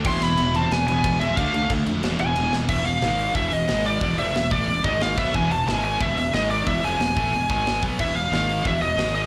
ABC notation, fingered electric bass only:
X:1
M:4/4
L:1/8
Q:1/4=181
K:none
V:1 name="Fingered electric bass" clef=bass
E,,, E,,, E,,,2 E,, E,,, E,,, E,, | D,, D,, D,, F,, E,,, E,,, E,,, E,,, | E,,, E,,, ^G,,,2 E,,, E,,, G,,,2 | E,,, F,,, E,,, A,,, E,,, ^G,,,2 B,,, |
E,,, E,,, ^G,,,2 E,,, E,,, G,,,2 | E,,, F,,, E,,, A,,, E,,, ^G,,,2 B,,, | E,,, E,,, ^G,,,2 E,,, E,,, G,,,2 |]